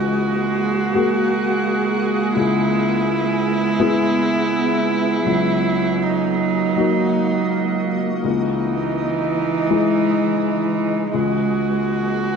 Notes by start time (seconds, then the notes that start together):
Already playing: C#2 G#3 A#3 F#4 G#4 F#5
0.95 A#3 F#4 G#4
2.35 C#2 B3 E4 E5
3.80 B3 E4 G#4
5.26 C#2 F#3 A#3 F#4 D#5
6.02 D#4
6.76 A#3 D#4 F#4
8.24 C#2 E3 G#3 D#4
9.70 G#3 E4 G#4
11.13 C#2 G#3 A#3 F#4 G#4 F#5